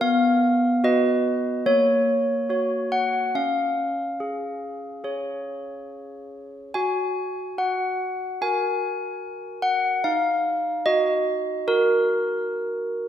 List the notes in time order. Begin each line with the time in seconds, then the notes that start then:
0.01 B3 F5
0.84 F#4 B4 D#5
1.66 A#3 C#5
2.49 F#4 C#5
2.92 F#5
3.35 C#4 F5
4.20 G#4
5.04 G#4 C#5
6.74 F#4 G#5
7.58 F#4 F#5
8.42 F#4 A#4 G#5
9.62 F#5
10.04 D#4 F5
10.86 F#4 D#5
11.67 F#4 A#4